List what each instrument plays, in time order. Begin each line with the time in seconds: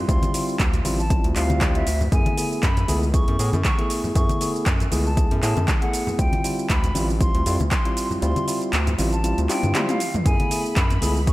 0.08 analog synth bass D2, tine electric piano G3 C4 E4 F4, flute C6, kick, closed hi-hat, shaker
0.22 closed hi-hat, high conga, shaker
0.34 tine electric piano G3 C4 E4 F4, open hi-hat, shaker
0.49 shaker
0.60 analog synth bass D2, kick, clap, closed hi-hat, shaker
0.74 closed hi-hat, low conga, shaker
0.85 analog synth bass A1, tine electric piano G3 C4 E4 F4, open hi-hat, high conga, shaker
0.99 flute A5, shaker
1.10 tine electric piano G3 C4 E4 F4, kick, closed hi-hat, shaker
1.24 analog synth bass D2, closed hi-hat
1.35 analog synth bass D2, tine electric piano G3 C4 E4 F4, flute F5, clap, open hi-hat, shaker
1.50 closed hi-hat, high conga, shaker
1.61 tine electric piano G3 C4 E4 F4, kick, clap, closed hi-hat, shaker
1.75 flute E5, closed hi-hat
1.87 analog synth bass D2, open hi-hat, shaker
2.01 low conga, shaker
2.12 analog synth bass F#2, tine electric piano A3 B3 E4 G#4, flute G#5, kick, closed hi-hat, shaker
2.26 closed hi-hat, high conga
2.37 tine electric piano A3 B3 E4 G#4, open hi-hat, shaker
2.52 shaker
2.63 analog synth bass F#2, flute B5, kick, clap, closed hi-hat, shaker
2.77 closed hi-hat, low conga, shaker
2.88 analog synth bass C#2, tine electric piano A3 B3 E4 G#4, open hi-hat, high conga, shaker
3.03 shaker
3.13 tine electric piano A3 B3 E4 G#4, flute C#6, kick, closed hi-hat, shaker
3.28 analog synth bass F#2, closed hi-hat
3.39 analog synth bass A2, tine electric piano A3 B3 E4 G#4, open hi-hat, shaker
3.53 analog synth bass F#2, closed hi-hat, high conga, shaker
3.65 flute C#6, kick, clap, closed hi-hat, shaker
3.78 tine electric piano A3 B3 E4 G#4, closed hi-hat
3.90 open hi-hat, shaker
4.04 low conga, shaker
4.15 analog synth bass F#2, tine electric piano A3 B3 E4 G#4, flute C#6, kick, closed hi-hat, shaker
4.29 closed hi-hat, high conga, shaker
4.41 tine electric piano A3 B3 E4 G#4, open hi-hat, shaker
4.56 shaker
4.66 analog synth bass F#2, kick, clap, closed hi-hat, shaker
4.80 closed hi-hat, low conga, shaker
4.91 analog synth bass C#2, tine electric piano A3 B3 E4 G#4, open hi-hat, high conga, shaker
5.06 flute A5, shaker
5.17 tine electric piano A3 B3 E4 G#4, kick, closed hi-hat, shaker
5.31 analog synth bass F#2, closed hi-hat
5.42 analog synth bass A2, tine electric piano A3 B3 E4 G#4, flute A5, clap, open hi-hat, shaker
5.57 analog synth bass F#2, closed hi-hat, high conga, shaker
5.68 kick, clap, closed hi-hat, shaker
5.82 tine electric piano A3 B3 E4 G#4, flute F#5, closed hi-hat
5.93 open hi-hat, shaker
6.07 low conga, shaker
6.18 analog synth bass D2, tine electric piano G3 C4 E4 F4, flute G5, kick, closed hi-hat, shaker
6.33 closed hi-hat, high conga
6.44 tine electric piano G3 C4 E4 F4, open hi-hat, shaker
6.59 shaker
6.70 analog synth bass D2, flute B5, kick, clap, closed hi-hat, shaker
6.84 closed hi-hat, low conga, shaker
6.95 analog synth bass A1, tine electric piano G3 C4 E4 F4, open hi-hat, high conga, shaker
7.10 shaker
7.20 tine electric piano G3 C4 E4 F4, flute C6, kick, closed hi-hat, shaker
7.35 analog synth bass D2, closed hi-hat
7.46 analog synth bass F2, tine electric piano G3 C4 E4 F4, open hi-hat, shaker
7.60 analog synth bass D2, closed hi-hat, high conga, shaker
7.71 flute C6, kick, clap, closed hi-hat, shaker
7.85 tine electric piano G3 C4 E4 F4, closed hi-hat
7.97 open hi-hat, shaker
8.11 low conga, shaker
8.22 analog synth bass D2, tine electric piano G3 C4 E4 F4, flute C6, closed hi-hat, shaker
8.36 closed hi-hat, high conga, shaker
8.47 tine electric piano G3 C4 E4 F4, open hi-hat, shaker
8.62 closed hi-hat, shaker
8.73 analog synth bass D2, clap, closed hi-hat, shaker
8.87 closed hi-hat, low conga, shaker
8.98 analog synth bass A1, tine electric piano G3 C4 E4 F4, open hi-hat, high conga, shaker
9.12 flute A5, closed hi-hat, shaker
9.24 tine electric piano G3 C4 E4 F4, closed hi-hat, shaker
9.38 analog synth bass D2, closed hi-hat, shaker
9.49 tine electric piano G3 C4 E4 F4, flute G5, clap, open hi-hat, high tom, shaker
9.63 analog synth bass G2, closed hi-hat, high conga, shaker
9.74 tine electric piano G3 C4 E4 F4, clap, closed hi-hat, mid tom, shaker
9.89 flute F5, closed hi-hat, mid tom, shaker
10.00 open hi-hat, shaker
10.14 closed hi-hat, mid tom, low conga, shaker
10.25 analog synth bass F#2, tine electric piano A3 B3 E4 G#4, flute G#5, violin section B5, kick, closed hi-hat, shaker
10.40 closed hi-hat, high conga
10.51 tine electric piano A3 B3 E4 G#4, open hi-hat, shaker
10.66 shaker
10.76 analog synth bass F#2, flute B5, kick, clap, closed hi-hat, shaker
10.90 closed hi-hat, low conga, shaker
11.01 analog synth bass C#2, tine electric piano A3 B3 E4 G#4, open hi-hat, high conga, shaker
11.17 shaker
11.27 tine electric piano A3 B3 E4 G#4, flute C#6, kick, closed hi-hat, shaker